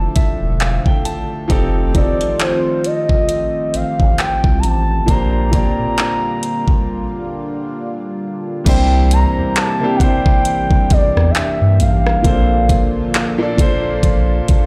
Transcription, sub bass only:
0, 0, Header, 1, 2, 480
1, 0, Start_track
1, 0, Tempo, 895522
1, 803, Time_signature, 4, 2, 24, 8
1, 7858, End_track
2, 0, Start_track
2, 0, Title_t, "Sub bass"
2, 0, Program_c, 0, 38
2, 224, Note_on_c, 0, 28, 94
2, 425, Note_off_c, 0, 28, 0
2, 804, Note_on_c, 0, 29, 102
2, 1122, Note_off_c, 0, 29, 0
2, 1184, Note_on_c, 0, 33, 46
2, 1224, Note_off_c, 0, 33, 0
2, 2005, Note_on_c, 0, 33, 46
2, 2061, Note_off_c, 0, 33, 0
2, 2143, Note_on_c, 0, 33, 95
2, 2227, Note_off_c, 0, 33, 0
2, 2381, Note_on_c, 0, 36, 86
2, 2485, Note_on_c, 0, 33, 100
2, 2493, Note_off_c, 0, 36, 0
2, 2686, Note_off_c, 0, 33, 0
2, 2724, Note_on_c, 0, 34, 108
2, 3042, Note_off_c, 0, 34, 0
2, 3105, Note_on_c, 0, 46, 45
2, 3144, Note_off_c, 0, 46, 0
2, 4644, Note_on_c, 0, 36, 108
2, 4962, Note_off_c, 0, 36, 0
2, 5024, Note_on_c, 0, 40, 46
2, 5064, Note_off_c, 0, 40, 0
2, 5847, Note_on_c, 0, 40, 49
2, 5902, Note_off_c, 0, 40, 0
2, 5984, Note_on_c, 0, 40, 97
2, 6068, Note_off_c, 0, 40, 0
2, 6225, Note_on_c, 0, 43, 95
2, 6326, Note_on_c, 0, 33, 92
2, 6334, Note_off_c, 0, 43, 0
2, 6526, Note_off_c, 0, 33, 0
2, 6564, Note_on_c, 0, 34, 114
2, 6882, Note_off_c, 0, 34, 0
2, 6945, Note_on_c, 0, 34, 50
2, 6985, Note_off_c, 0, 34, 0
2, 7521, Note_on_c, 0, 34, 100
2, 7723, Note_off_c, 0, 34, 0
2, 7858, End_track
0, 0, End_of_file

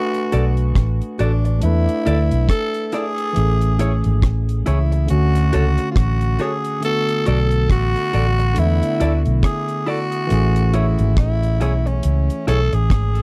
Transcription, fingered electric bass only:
0, 0, Header, 1, 2, 480
1, 0, Start_track
1, 0, Tempo, 867303
1, 1859, Time_signature, 4, 2, 24, 8
1, 7316, End_track
2, 0, Start_track
2, 0, Title_t, "Fingered electric bass"
2, 0, Program_c, 0, 33
2, 186, Note_on_c, 0, 35, 89
2, 403, Note_off_c, 0, 35, 0
2, 421, Note_on_c, 0, 33, 82
2, 550, Note_off_c, 0, 33, 0
2, 665, Note_on_c, 0, 33, 85
2, 882, Note_off_c, 0, 33, 0
2, 905, Note_on_c, 0, 40, 92
2, 1032, Note_off_c, 0, 40, 0
2, 1145, Note_on_c, 0, 38, 87
2, 1272, Note_off_c, 0, 38, 0
2, 1285, Note_on_c, 0, 35, 88
2, 1373, Note_off_c, 0, 35, 0
2, 1865, Note_on_c, 0, 33, 90
2, 2221, Note_off_c, 0, 33, 0
2, 2247, Note_on_c, 0, 32, 89
2, 2334, Note_off_c, 0, 32, 0
2, 2341, Note_on_c, 0, 33, 78
2, 2560, Note_off_c, 0, 33, 0
2, 2587, Note_on_c, 0, 37, 80
2, 2803, Note_off_c, 0, 37, 0
2, 2828, Note_on_c, 0, 38, 92
2, 3044, Note_off_c, 0, 38, 0
2, 3066, Note_on_c, 0, 37, 75
2, 3193, Note_off_c, 0, 37, 0
2, 3302, Note_on_c, 0, 33, 81
2, 3520, Note_off_c, 0, 33, 0
2, 4029, Note_on_c, 0, 35, 96
2, 4244, Note_off_c, 0, 35, 0
2, 4263, Note_on_c, 0, 33, 89
2, 4391, Note_off_c, 0, 33, 0
2, 4506, Note_on_c, 0, 33, 92
2, 4723, Note_off_c, 0, 33, 0
2, 4747, Note_on_c, 0, 40, 81
2, 4873, Note_off_c, 0, 40, 0
2, 4987, Note_on_c, 0, 38, 86
2, 5113, Note_off_c, 0, 38, 0
2, 5128, Note_on_c, 0, 35, 95
2, 5215, Note_off_c, 0, 35, 0
2, 5707, Note_on_c, 0, 33, 102
2, 6062, Note_off_c, 0, 33, 0
2, 6089, Note_on_c, 0, 32, 102
2, 6176, Note_off_c, 0, 32, 0
2, 6184, Note_on_c, 0, 33, 91
2, 6428, Note_off_c, 0, 33, 0
2, 6428, Note_on_c, 0, 35, 84
2, 6644, Note_off_c, 0, 35, 0
2, 6669, Note_on_c, 0, 37, 77
2, 6794, Note_off_c, 0, 37, 0
2, 6906, Note_on_c, 0, 35, 78
2, 7033, Note_off_c, 0, 35, 0
2, 7046, Note_on_c, 0, 33, 83
2, 7134, Note_off_c, 0, 33, 0
2, 7143, Note_on_c, 0, 32, 95
2, 7316, Note_off_c, 0, 32, 0
2, 7316, End_track
0, 0, End_of_file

